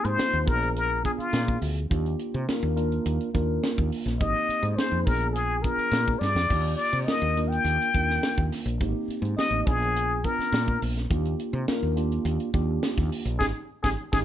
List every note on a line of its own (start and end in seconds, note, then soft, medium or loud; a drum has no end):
0.00 0.12 A#3 medium
0.00 0.12 C4 medium
0.00 0.12 D#4 medium
0.00 0.13 G4 medium
0.05 0.16 G#2 medium
0.05 0.49 C5 loud
0.05 closed hi-hat soft
0.16 0.43 A#3 medium
0.16 0.44 C4 medium
0.16 0.44 D#4 medium
0.16 0.44 F4 medium
0.16 muted fretless electric bass stroke soft
0.16 snare loud
0.16 closed hi-hat medium
0.33 0.45 D#2 medium
0.44 1.06 A#1 medium
0.44 0.98 B3 medium
0.44 0.98 D4 medium
0.44 0.98 F4 medium
0.44 0.99 G#4 medium
0.44 0.76 A#4 medium
0.44 kick loud
0.44 closed hi-hat medium
0.62 closed hi-hat soft
0.76 1.03 A#4 medium
0.76 closed hi-hat medium
1.03 1.82 B3 medium
1.03 1.82 D4 medium
1.03 1.83 F4 medium
1.03 1.83 G#4 medium
1.03 1.12 G#4 medium
1.03 kick medium
1.03 closed hi-hat medium
1.18 1.59 F4 medium
1.18 muted fretless electric bass stroke soft
1.18 closed hi-hat soft
1.33 1.57 A#2 medium
1.33 snare loud
1.33 closed hi-hat medium
1.48 kick medium
1.62 1.85 D2 medium
1.62 open hi-hat medium
1.77 closed hi-hat soft
1.89 2.14 D#2 loud
1.89 2.42 A#3 medium
1.89 2.43 D4 medium
1.89 2.43 F4 medium
1.89 2.43 G4 medium
1.89 kick loud
1.89 closed hi-hat medium
2.06 closed hi-hat soft
2.19 closed hi-hat medium
2.34 2.46 C3 medium
2.48 2.74 A#3 medium
2.48 2.74 D4 medium
2.48 2.75 F4 medium
2.48 2.75 A#4 medium
2.48 muted fretless electric bass stroke soft
2.48 snare loud
2.48 closed hi-hat medium
2.63 2.98 D#2 medium
2.75 3.28 A#3 medium
2.75 3.29 D4 medium
2.75 3.29 F4 medium
2.75 3.29 A#4 medium
2.75 closed hi-hat medium
2.92 closed hi-hat soft
3.06 3.18 D#2 medium
3.06 closed hi-hat medium
3.20 closed hi-hat soft
3.33 3.58 D#2 medium
3.33 4.12 A#3 medium
3.33 4.13 D4 medium
3.33 4.13 F4 medium
3.33 4.13 A#4 medium
3.33 kick medium
3.33 closed hi-hat medium
3.63 snare loud
3.63 closed hi-hat medium
3.78 3.90 D#2 medium
3.78 kick medium
3.78 closed hi-hat soft
3.92 open hi-hat medium
4.06 4.18 A#1 medium
4.06 snare soft
4.06 closed hi-hat soft
4.20 4.33 G#1 medium
4.20 4.73 A#3 medium
4.20 4.73 C4 medium
4.20 4.73 D#4 medium
4.20 4.74 G4 medium
4.20 4.77 D#5 medium
4.20 kick loud
4.20 closed hi-hat medium
4.49 muted fretless electric bass stroke soft
4.49 closed hi-hat medium
4.63 4.75 G#2 medium
4.63 closed hi-hat soft
4.76 5.04 A#3 medium
4.76 5.04 C4 medium
4.76 5.04 D#4 medium
4.76 5.04 G#4 medium
4.76 5.07 C5 medium
4.76 muted fretless electric bass stroke soft
4.76 snare loud
4.76 closed hi-hat medium
4.92 5.04 F2 medium
5.06 5.66 A#1 medium
5.06 5.59 B3 medium
5.06 5.59 D4 medium
5.06 5.59 F4 medium
5.06 5.59 G#4 medium
5.06 5.35 A#4 medium
5.06 kick loud
5.06 open hi-hat medium
5.21 closed hi-hat soft
5.33 5.63 G#4 medium
5.33 closed hi-hat medium
5.62 6.43 B3 medium
5.62 6.43 D4 medium
5.62 6.43 F4 medium
5.62 6.43 G#4 medium
5.62 6.20 A#4 medium
5.62 kick medium
5.62 closed hi-hat medium
5.77 muted fretless electric bass stroke soft
5.77 closed hi-hat soft
5.92 6.16 A#2 medium
5.92 snare loud
5.92 closed hi-hat medium
6.08 kick medium
6.19 6.34 G2 medium
6.19 6.76 D5 medium
6.19 snare medium
6.35 6.48 F2 medium
6.35 snare medium
6.50 6.74 D#2 loud
6.50 7.02 A#3 medium
6.50 7.03 D4 medium
6.50 7.03 F4 medium
6.50 7.03 G4 medium
6.50 kick loud
6.50 closed hi-hat medium
6.50 crash medium
6.65 closed hi-hat soft
6.76 7.06 D5 medium
6.76 closed hi-hat medium
6.93 7.05 C3 medium
7.04 7.34 A#3 medium
7.04 7.34 D4 medium
7.04 7.34 F4 medium
7.04 7.34 A#4 medium
7.04 7.50 D#5 loud
7.04 muted fretless electric bass stroke soft
7.04 snare loud
7.04 closed hi-hat medium
7.22 7.57 D#2 medium
7.36 7.89 A#3 medium
7.36 7.89 D4 medium
7.36 7.89 F4 medium
7.36 7.89 A#4 medium
7.36 closed hi-hat medium
7.48 8.50 G5 medium
7.48 closed hi-hat soft
7.64 7.77 D#2 medium
7.64 closed hi-hat medium
7.81 closed hi-hat soft
7.93 8.18 D#2 medium
7.93 8.72 A#3 medium
7.93 8.73 D4 medium
7.93 8.73 F4 medium
7.93 8.73 A#4 medium
7.93 kick medium
7.93 closed hi-hat medium
8.10 snare soft
8.23 snare loud
8.23 closed hi-hat medium
8.38 8.49 D#2 medium
8.38 kick medium
8.38 closed hi-hat soft
8.52 snare soft
8.52 open hi-hat medium
8.66 8.77 A#1 medium
8.66 closed hi-hat soft
8.80 8.93 G#1 medium
8.80 9.32 A#3 medium
8.80 9.33 C4 medium
8.80 9.33 D#4 medium
8.80 9.33 G4 medium
8.80 kick loud
8.80 closed hi-hat medium
9.08 muted fretless electric bass stroke soft
9.08 closed hi-hat medium
9.22 9.34 G#2 medium
9.22 closed hi-hat soft
9.37 9.64 A#3 medium
9.37 9.64 C4 medium
9.37 9.64 D#4 medium
9.37 9.64 G4 medium
9.37 9.68 D#5 loud
9.37 muted fretless electric bass stroke soft
9.37 snare loud
9.37 closed hi-hat medium
9.50 9.63 A1 medium
9.66 10.26 A#1 medium
9.66 10.19 B3 medium
9.66 10.19 D4 medium
9.66 10.19 F4 medium
9.66 10.26 G#4 medium
9.66 10.19 G#4 medium
9.66 kick loud
9.66 closed hi-hat medium
9.82 closed hi-hat soft
9.96 closed hi-hat medium
10.24 11.03 B3 medium
10.24 11.03 D4 medium
10.24 11.03 F4 medium
10.24 10.82 A#4 medium
10.24 11.03 A#4 medium
10.24 kick medium
10.24 closed hi-hat medium
10.39 muted fretless electric bass stroke soft
10.39 snare soft
10.39 closed hi-hat soft
10.52 10.76 A#2 loud
10.52 snare loud
10.52 closed hi-hat medium
10.68 kick medium
10.82 11.06 A#1 medium
10.82 open hi-hat medium
10.97 snare soft
10.97 closed hi-hat soft
11.10 11.34 D#2 loud
11.10 11.62 A#3 medium
11.10 11.62 D4 medium
11.10 11.63 F4 medium
11.10 11.63 G4 medium
11.10 kick loud
11.10 closed hi-hat medium
11.25 closed hi-hat soft
11.39 closed hi-hat medium
11.53 11.65 C3 medium
11.67 11.94 A#3 medium
11.67 11.94 D4 medium
11.67 11.94 F4 medium
11.67 11.94 A#4 medium
11.67 muted fretless electric bass stroke soft
11.67 snare loud
11.67 closed hi-hat medium
11.83 12.18 D#2 medium
11.96 12.49 A#3 medium
11.96 12.49 D4 medium
11.96 12.49 F4 medium
11.96 12.49 G4 medium
11.96 closed hi-hat medium
12.12 closed hi-hat soft
12.25 12.37 D#2 medium
12.25 closed hi-hat medium
12.40 closed hi-hat soft
12.53 12.78 D#2 medium
12.53 13.32 A#3 medium
12.53 13.32 D4 medium
12.53 13.33 F4 medium
12.53 13.33 G4 loud
12.53 kick medium
12.53 closed hi-hat medium
12.83 snare loud
12.83 closed hi-hat medium
12.98 13.09 D#2 medium
12.98 kick medium
12.98 snare soft
12.98 closed hi-hat soft
13.12 open hi-hat medium
13.25 13.37 A#1 medium
13.25 closed hi-hat soft
13.39 13.51 G#1 medium
13.39 13.49 D#4 medium
13.39 13.49 G4 medium
13.39 13.46 G#4 medium
13.39 13.49 G#4 medium
13.39 kick medium
13.39 snare medium
13.83 13.94 G#1 medium
13.83 13.93 D#4 medium
13.83 13.93 G4 medium
13.83 13.90 G#4 loud
13.83 13.92 G#4 medium
13.83 kick medium
13.83 snare medium
14.12 14.23 G#1 medium
14.12 14.22 D#4 loud
14.12 14.22 G4 medium
14.12 14.19 G#4 medium
14.12 14.22 G#4 loud
14.12 kick loud
14.12 snare medium